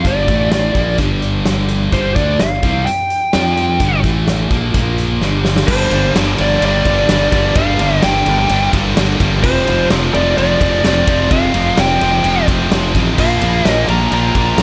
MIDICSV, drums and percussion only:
0, 0, Header, 1, 2, 480
1, 0, Start_track
1, 0, Key_signature, -2, "minor"
1, 0, Tempo, 469116
1, 51, Time_signature, 4, 2, 24, 8
1, 14966, End_track
2, 0, Start_track
2, 0, Title_t, "Drums"
2, 47, Note_on_c, 9, 42, 85
2, 50, Note_on_c, 9, 36, 96
2, 149, Note_off_c, 9, 42, 0
2, 152, Note_off_c, 9, 36, 0
2, 289, Note_on_c, 9, 36, 95
2, 289, Note_on_c, 9, 42, 61
2, 391, Note_off_c, 9, 36, 0
2, 391, Note_off_c, 9, 42, 0
2, 526, Note_on_c, 9, 42, 87
2, 528, Note_on_c, 9, 38, 103
2, 628, Note_off_c, 9, 42, 0
2, 630, Note_off_c, 9, 38, 0
2, 764, Note_on_c, 9, 42, 63
2, 768, Note_on_c, 9, 36, 93
2, 866, Note_off_c, 9, 42, 0
2, 870, Note_off_c, 9, 36, 0
2, 1000, Note_on_c, 9, 42, 89
2, 1008, Note_on_c, 9, 36, 96
2, 1103, Note_off_c, 9, 42, 0
2, 1110, Note_off_c, 9, 36, 0
2, 1248, Note_on_c, 9, 42, 63
2, 1351, Note_off_c, 9, 42, 0
2, 1487, Note_on_c, 9, 42, 86
2, 1489, Note_on_c, 9, 38, 97
2, 1589, Note_off_c, 9, 42, 0
2, 1591, Note_off_c, 9, 38, 0
2, 1723, Note_on_c, 9, 42, 72
2, 1826, Note_off_c, 9, 42, 0
2, 1965, Note_on_c, 9, 42, 81
2, 1970, Note_on_c, 9, 36, 85
2, 2068, Note_off_c, 9, 42, 0
2, 2072, Note_off_c, 9, 36, 0
2, 2211, Note_on_c, 9, 36, 89
2, 2213, Note_on_c, 9, 42, 62
2, 2314, Note_off_c, 9, 36, 0
2, 2315, Note_off_c, 9, 42, 0
2, 2449, Note_on_c, 9, 42, 75
2, 2451, Note_on_c, 9, 38, 106
2, 2551, Note_off_c, 9, 42, 0
2, 2553, Note_off_c, 9, 38, 0
2, 2692, Note_on_c, 9, 36, 88
2, 2696, Note_on_c, 9, 42, 57
2, 2795, Note_off_c, 9, 36, 0
2, 2798, Note_off_c, 9, 42, 0
2, 2934, Note_on_c, 9, 42, 84
2, 3036, Note_off_c, 9, 42, 0
2, 3172, Note_on_c, 9, 42, 64
2, 3275, Note_off_c, 9, 42, 0
2, 3407, Note_on_c, 9, 42, 80
2, 3409, Note_on_c, 9, 38, 107
2, 3509, Note_off_c, 9, 42, 0
2, 3512, Note_off_c, 9, 38, 0
2, 3654, Note_on_c, 9, 42, 67
2, 3757, Note_off_c, 9, 42, 0
2, 3884, Note_on_c, 9, 42, 90
2, 3891, Note_on_c, 9, 36, 93
2, 3986, Note_off_c, 9, 42, 0
2, 3993, Note_off_c, 9, 36, 0
2, 4131, Note_on_c, 9, 42, 69
2, 4132, Note_on_c, 9, 36, 91
2, 4233, Note_off_c, 9, 42, 0
2, 4235, Note_off_c, 9, 36, 0
2, 4373, Note_on_c, 9, 42, 86
2, 4375, Note_on_c, 9, 38, 97
2, 4476, Note_off_c, 9, 42, 0
2, 4478, Note_off_c, 9, 38, 0
2, 4608, Note_on_c, 9, 42, 67
2, 4613, Note_on_c, 9, 36, 92
2, 4711, Note_off_c, 9, 42, 0
2, 4715, Note_off_c, 9, 36, 0
2, 4850, Note_on_c, 9, 42, 83
2, 4854, Note_on_c, 9, 36, 89
2, 4952, Note_off_c, 9, 42, 0
2, 4956, Note_off_c, 9, 36, 0
2, 5094, Note_on_c, 9, 42, 72
2, 5196, Note_off_c, 9, 42, 0
2, 5335, Note_on_c, 9, 38, 56
2, 5437, Note_off_c, 9, 38, 0
2, 5573, Note_on_c, 9, 38, 82
2, 5675, Note_off_c, 9, 38, 0
2, 5693, Note_on_c, 9, 38, 91
2, 5795, Note_off_c, 9, 38, 0
2, 5811, Note_on_c, 9, 49, 120
2, 5813, Note_on_c, 9, 36, 99
2, 5914, Note_off_c, 9, 49, 0
2, 5915, Note_off_c, 9, 36, 0
2, 6048, Note_on_c, 9, 51, 70
2, 6150, Note_off_c, 9, 51, 0
2, 6298, Note_on_c, 9, 51, 99
2, 6300, Note_on_c, 9, 38, 109
2, 6400, Note_off_c, 9, 51, 0
2, 6402, Note_off_c, 9, 38, 0
2, 6530, Note_on_c, 9, 51, 78
2, 6632, Note_off_c, 9, 51, 0
2, 6773, Note_on_c, 9, 51, 109
2, 6875, Note_off_c, 9, 51, 0
2, 7010, Note_on_c, 9, 51, 73
2, 7013, Note_on_c, 9, 36, 85
2, 7113, Note_off_c, 9, 51, 0
2, 7116, Note_off_c, 9, 36, 0
2, 7252, Note_on_c, 9, 51, 94
2, 7254, Note_on_c, 9, 38, 100
2, 7354, Note_off_c, 9, 51, 0
2, 7356, Note_off_c, 9, 38, 0
2, 7492, Note_on_c, 9, 51, 85
2, 7493, Note_on_c, 9, 36, 92
2, 7594, Note_off_c, 9, 51, 0
2, 7595, Note_off_c, 9, 36, 0
2, 7727, Note_on_c, 9, 51, 103
2, 7733, Note_on_c, 9, 36, 120
2, 7829, Note_off_c, 9, 51, 0
2, 7835, Note_off_c, 9, 36, 0
2, 7970, Note_on_c, 9, 51, 83
2, 8073, Note_off_c, 9, 51, 0
2, 8209, Note_on_c, 9, 51, 106
2, 8211, Note_on_c, 9, 38, 108
2, 8312, Note_off_c, 9, 51, 0
2, 8314, Note_off_c, 9, 38, 0
2, 8451, Note_on_c, 9, 51, 77
2, 8554, Note_off_c, 9, 51, 0
2, 8689, Note_on_c, 9, 51, 108
2, 8791, Note_off_c, 9, 51, 0
2, 8935, Note_on_c, 9, 51, 85
2, 8936, Note_on_c, 9, 36, 82
2, 9037, Note_off_c, 9, 51, 0
2, 9038, Note_off_c, 9, 36, 0
2, 9176, Note_on_c, 9, 51, 98
2, 9178, Note_on_c, 9, 38, 104
2, 9278, Note_off_c, 9, 51, 0
2, 9280, Note_off_c, 9, 38, 0
2, 9416, Note_on_c, 9, 36, 90
2, 9420, Note_on_c, 9, 51, 82
2, 9518, Note_off_c, 9, 36, 0
2, 9522, Note_off_c, 9, 51, 0
2, 9656, Note_on_c, 9, 49, 93
2, 9657, Note_on_c, 9, 36, 103
2, 9758, Note_off_c, 9, 49, 0
2, 9759, Note_off_c, 9, 36, 0
2, 9897, Note_on_c, 9, 51, 72
2, 9999, Note_off_c, 9, 51, 0
2, 10132, Note_on_c, 9, 51, 108
2, 10134, Note_on_c, 9, 38, 116
2, 10234, Note_off_c, 9, 51, 0
2, 10236, Note_off_c, 9, 38, 0
2, 10379, Note_on_c, 9, 51, 61
2, 10481, Note_off_c, 9, 51, 0
2, 10618, Note_on_c, 9, 51, 94
2, 10720, Note_off_c, 9, 51, 0
2, 10856, Note_on_c, 9, 36, 84
2, 10858, Note_on_c, 9, 51, 77
2, 10958, Note_off_c, 9, 36, 0
2, 10960, Note_off_c, 9, 51, 0
2, 11095, Note_on_c, 9, 51, 92
2, 11097, Note_on_c, 9, 38, 94
2, 11198, Note_off_c, 9, 51, 0
2, 11200, Note_off_c, 9, 38, 0
2, 11332, Note_on_c, 9, 51, 76
2, 11333, Note_on_c, 9, 36, 97
2, 11435, Note_off_c, 9, 36, 0
2, 11435, Note_off_c, 9, 51, 0
2, 11570, Note_on_c, 9, 51, 96
2, 11572, Note_on_c, 9, 36, 116
2, 11673, Note_off_c, 9, 51, 0
2, 11674, Note_off_c, 9, 36, 0
2, 11807, Note_on_c, 9, 51, 78
2, 11909, Note_off_c, 9, 51, 0
2, 12046, Note_on_c, 9, 51, 101
2, 12048, Note_on_c, 9, 38, 115
2, 12148, Note_off_c, 9, 51, 0
2, 12151, Note_off_c, 9, 38, 0
2, 12290, Note_on_c, 9, 51, 78
2, 12392, Note_off_c, 9, 51, 0
2, 12523, Note_on_c, 9, 51, 96
2, 12626, Note_off_c, 9, 51, 0
2, 12770, Note_on_c, 9, 36, 94
2, 12774, Note_on_c, 9, 51, 74
2, 12872, Note_off_c, 9, 36, 0
2, 12876, Note_off_c, 9, 51, 0
2, 13009, Note_on_c, 9, 51, 105
2, 13012, Note_on_c, 9, 38, 110
2, 13112, Note_off_c, 9, 51, 0
2, 13114, Note_off_c, 9, 38, 0
2, 13250, Note_on_c, 9, 36, 86
2, 13254, Note_on_c, 9, 51, 85
2, 13352, Note_off_c, 9, 36, 0
2, 13357, Note_off_c, 9, 51, 0
2, 13488, Note_on_c, 9, 49, 102
2, 13489, Note_on_c, 9, 36, 98
2, 13590, Note_off_c, 9, 49, 0
2, 13591, Note_off_c, 9, 36, 0
2, 13726, Note_on_c, 9, 51, 74
2, 13828, Note_off_c, 9, 51, 0
2, 13968, Note_on_c, 9, 51, 90
2, 13970, Note_on_c, 9, 38, 118
2, 14071, Note_off_c, 9, 51, 0
2, 14073, Note_off_c, 9, 38, 0
2, 14206, Note_on_c, 9, 51, 70
2, 14308, Note_off_c, 9, 51, 0
2, 14443, Note_on_c, 9, 51, 98
2, 14546, Note_off_c, 9, 51, 0
2, 14684, Note_on_c, 9, 36, 85
2, 14684, Note_on_c, 9, 51, 72
2, 14787, Note_off_c, 9, 36, 0
2, 14787, Note_off_c, 9, 51, 0
2, 14917, Note_on_c, 9, 51, 89
2, 14919, Note_on_c, 9, 38, 103
2, 14966, Note_off_c, 9, 38, 0
2, 14966, Note_off_c, 9, 51, 0
2, 14966, End_track
0, 0, End_of_file